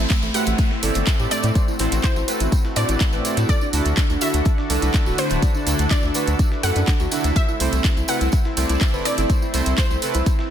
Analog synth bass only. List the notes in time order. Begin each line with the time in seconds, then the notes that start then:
0.23 A1
0.47 A1
0.83 G1
0.95 G1
1.19 A2
1.44 A2
1.80 A1
1.92 A1
2.16 A1
2.40 A1
2.76 A2
2.89 A1
3.13 A1
3.37 A2
3.73 D2
3.85 D2
4.10 D2
4.34 D2
4.70 C2
4.82 C2
5.06 D1
5.31 D1
5.67 D2
5.79 D2
6.03 D2
6.28 D2
6.63 F#2
6.76 F#2
7.00 D2
7.24 D2
7.60 C2
7.73 C2
7.97 C2
8.21 C2
8.57 C2
8.70 C2
8.94 G1
9.18 G1
9.54 C2
9.66 C2
9.91 C2
10.15 C2